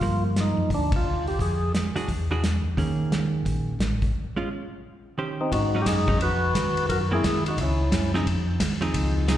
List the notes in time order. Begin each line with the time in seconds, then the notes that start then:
Already playing: F4
0.01 G2 F3 A#3, kick, open hi-hat
0.36 snare, closed hi-hat
0.40 D#4
0.57 F#2
0.70 D2, kick, open hi-hat
0.74 D4
0.92 F4, kick, ride
1.27 G4, open hi-hat
1.39 F2 G#4, kick, open hi-hat
1.75 snare, closed hi-hat
1.95 F2 E3 D4 F#4 G#4, open hi-hat
2.08 E2, kick, open hi-hat
2.31 E3 D4 F#4 G#4
2.44 snare, closed hi-hat
2.64 E2
2.77 D#2 D#3 A#3 C#4 G#4, kick, open hi-hat
3.12 snare, closed hi-hat
3.45 A#1, kick, open hi-hat
3.79 A1, snare, closed hi-hat
4.02 kick, open hi-hat
4.36 G#3 C#4 F4
5.18 D#3 C#4 G4 C5
5.41 C4 D#4
5.52 G#2 D#4 F#4, kick, ride
5.75 F#3 C#4 D#4
5.82 G4
5.86 F#2 D#4 G#4, kick, snare, hi-hat pedal, ride
6.08 F#3 C#4 D#4, kick
6.20 F2 F#4 B4, kick, ride
6.55 D#2, kick, snare, hi-hat pedal, ride
6.77 ride
6.89 F#2 F#4 A#4, kick, ride
7.11 E3 A#3 C4 E4 G#4
7.23 D#2, kick, snare, hi-hat pedal, ride
7.46 F#4, ride
7.50 D#4
7.57 C#2 E4, kick, ride
7.63 C#4
7.92 F#2, kick, snare, hi-hat pedal, ride
8.14 F3 C4 D#4 G#4, snare
8.26 F2, kick, ride
8.60 D#2, kick, snare, hi-hat pedal, ride
8.81 D#2 F3 C4 D#4 G#4, ride
8.94 C#2, kick, ride
9.28 C2 F3 C4 D#4 G#4, kick, snare, hi-hat pedal, ride